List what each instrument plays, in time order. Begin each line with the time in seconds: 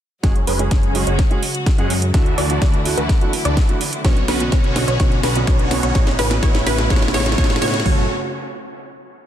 0.23 analog synth bass F#1, string section C#3 F#3 G#3 F#4, supersaw synth F#3 G#3 C#4 G#4 C#5, grand piano G#3 C#4 F#4 G#4, synth pluck C#5, kick, snare, closed hi-hat, riser
0.36 closed hi-hat
0.47 analog synth bass F#1, supersaw synth F#3 G#3 C#4 G#4 B4, synth pluck B4, open hi-hat
0.59 grand piano G#3 C#4 F#4 G#4, closed hi-hat
0.71 analog synth bass F#1, supersaw synth F#3 G#3 C#4 G#4 C#5, synth pluck C#5, kick, snare, closed hi-hat
0.83 closed hi-hat
0.95 grand piano G#3 C#4 F#4 G#4, open hi-hat
1.07 analog synth bass F#1, supersaw synth F#3 G#3 C#4 G#4 C#5, synth pluck C#5, closed hi-hat
1.19 kick, snare, closed hi-hat
1.30 grand piano G#3 C#4 F#4 G#4, closed hi-hat
1.43 open hi-hat
1.55 closed hi-hat
1.66 kick, snare, closed hi-hat
1.78 analog synth bass F#2, supersaw synth F#3 G#3 C#4 G#4 F#5, grand piano G#3 C#4 F#4 G#4, synth pluck F#5, closed hi-hat
1.90 open hi-hat
2.02 closed hi-hat
2.14 analog synth bass D2, grand piano D3 A3 D4 E4 F#4, string section D3 A3 E4, supersaw synth E3 A3 D4 F#4 E5, synth pluck E5, kick, snare, closed hi-hat
2.26 closed hi-hat
2.38 analog synth bass D2, supersaw synth E3 A3 D4 F#4 D5, synth pluck D5, open hi-hat
2.49 grand piano D3 A3 D4 E4 F#4, closed hi-hat
2.62 analog synth bass D2, supersaw synth E3 A3 D4 F#4 D5, synth pluck D5, kick, snare, closed hi-hat
2.74 closed hi-hat
2.85 grand piano D3 A3 D4 E4 F#4, open hi-hat
2.97 analog synth bass D2, supersaw synth E3 A3 D4 F#4 B4, synth pluck B4, closed hi-hat
3.09 kick, snare, closed hi-hat
3.21 grand piano D3 A3 D4 E4 F#4, closed hi-hat
3.33 open hi-hat
3.45 analog synth bass D2, supersaw synth E3 A3 D4 F#4 D5, synth pluck D5, closed hi-hat
3.57 kick, snare, closed hi-hat
3.68 grand piano D3 A3 D4 E4 F#4, closed hi-hat
3.81 open hi-hat
3.93 closed hi-hat
4.04 analog synth bass B1, grand piano B2 B3 C#4 D4 F#4, supersaw synth D3 B3 C#4 F#4 C#5, string section B3 C#4 F#4, synth pluck C#5, kick, snare, closed hi-hat
4.16 closed hi-hat
4.28 analog synth bass B1, supersaw synth D3 B3 C#4 F#4 B4, synth pluck B4, snare, open hi-hat
4.40 grand piano B2 B3 C#4 D4 F#4, closed hi-hat
4.52 analog synth bass B1, supersaw synth D3 B3 C#4 F#4 C#5, synth pluck C#5, kick, snare, closed hi-hat
4.64 closed hi-hat
4.76 grand piano B2 B3 C#4 D4 F#4, snare, open hi-hat
4.88 analog synth bass B1, supersaw synth D3 B3 C#4 F#4 C#5, synth pluck C#5, closed hi-hat
4.99 analog synth bass B1, grand piano B2 B3 C#4 D4 F#4, supersaw synth D3 B3 C#4 F#4 C#5, synth pluck C#5, kick, snare, closed hi-hat
5.12 closed hi-hat
5.23 analog synth bass B1, supersaw synth D3 B3 C#4 F#4 B4, synth pluck B4, snare, open hi-hat
5.35 grand piano B2 B3 C#4 D4 F#4, closed hi-hat
5.47 analog synth bass B1, supersaw synth D3 B3 C#4 F#4 C#5, synth pluck C#5, kick, snare, closed hi-hat
5.59 closed hi-hat
5.71 grand piano B2 B3 C#4 D4 F#4, snare, open hi-hat
5.83 analog synth bass B1, supersaw synth D3 B3 C#4 F#4 C#5, synth pluck C#5, closed hi-hat
5.95 analog synth bass A1, grand piano B2 B3 C#4 F#4, supersaw synth C#3 B3 C#4 F#4 C#5, string section C#3 A3 E4, synth pluck C#5, kick, snare, closed hi-hat
6.07 snare, closed hi-hat
6.19 analog synth bass A1, supersaw synth C#3 B3 C#4 F#4 B4, synth pluck B4, snare, open hi-hat
6.30 grand piano B2 B3 C#4 F#4, snare, closed hi-hat
6.42 analog synth bass A1, grand piano B2 B3 C#4 F#4, supersaw synth C#3 B3 C#4 F#4 C#5, synth pluck C#5, kick, snare, closed hi-hat
6.55 snare, closed hi-hat
6.67 analog synth bass A1, supersaw synth C#3 B3 C#4 F#4 B4, synth pluck B4, snare, open hi-hat
6.78 grand piano B2 B3 C#4 F#4, snare, closed hi-hat
6.90 analog synth bass A1, grand piano B2 B3 C#4 F#4, supersaw synth C#3 B3 C#4 F#4 C#5, synth pluck C#5, kick, snare, closed hi-hat
6.96 snare
7.02 snare, closed hi-hat
7.08 snare
7.14 analog synth bass A1, grand piano B2 B3 C#4 F#4, supersaw synth C#3 B3 C#4 F#4 C#5, synth pluck C#5, snare, open hi-hat
7.20 snare
7.26 snare, closed hi-hat
7.32 snare
7.37 analog synth bass A2, grand piano B2 B3 C#4 F#4, supersaw synth C#3 B3 C#4 F#4 C#5, synth pluck C#5, kick, snare, closed hi-hat
7.44 snare
7.50 snare, closed hi-hat
7.56 snare
7.61 analog synth bass A2, grand piano B2 B3 C#4 F#4, supersaw synth C#3 B3 C#4 F#4 C#5, synth pluck C#5, snare, open hi-hat
7.68 snare
7.74 snare, closed hi-hat
7.80 snare
7.84 analog synth bass F#1, string section C#3 F#3 A3 F#4, supersaw synth F#3 A3 C#4 A4 C#5, grand piano A3 C#4 F#4 A4, synth pluck C#5, kick, floor tom, open hi-hat